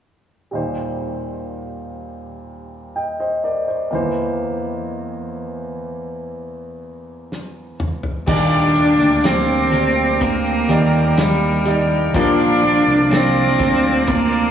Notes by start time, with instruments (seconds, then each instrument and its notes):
0.51 grand piano D#2 A#2 G3 D#4
0.55 grand piano C5
2.96 grand piano D#5 G5
3.20 grand piano C5 D#5
3.44 grand piano A#4 D5
3.68 grand piano C5
3.91 grand piano E2 E3 A#3 E4 C5
7.32 snare
7.80 mid tom
8.03 floor tom
8.26 fingered electric bass D#2, grand piano A#2 G3 D4 D5, steel-string acoustic guitar D#3 A#3 D4 G4, cello D4, pipe organ A#4 G5 D6, kick, crash
8.75 steel-string acoustic guitar A#3 D4 G4, closed hi-hat
9.00 fingered electric bass D2
9.24 steel-string acoustic guitar A#3 D4 G4, cello C4, snare, closed hi-hat
9.71 fingered electric bass D2, steel-string acoustic guitar A#3 D4 G4, closed hi-hat
10.21 cello A#3, pipe organ A#5, kick, closed hi-hat
10.46 closed hi-hat
10.69 fingered electric bass D#2, grand piano G3 D#4 D5, closed hi-hat
11.17 steel-string acoustic guitar D#3 A#3 D4 G4, cello G3, snare, closed hi-hat
11.65 grand piano G3 D#4 D5, steel-string acoustic guitar A#3 D4 G4, closed hi-hat
12.14 fingered electric bass A#1, steel-string acoustic guitar A#2 F3 A#3 D4 F4, grand piano F3 D4 A#4, cello D4, pipe organ D5 F5 D6, kick, closed hi-hat
12.62 steel-string acoustic guitar D4 F4, closed hi-hat
12.87 fingered electric bass C2
13.11 steel-string acoustic guitar F3 A#3 D4 F4, cello C4, snare, closed hi-hat
13.59 fingered electric bass D2, steel-string acoustic guitar A#3 D4 F4, kick, closed hi-hat
14.07 cello A#3, kick, closed hi-hat
14.32 closed hi-hat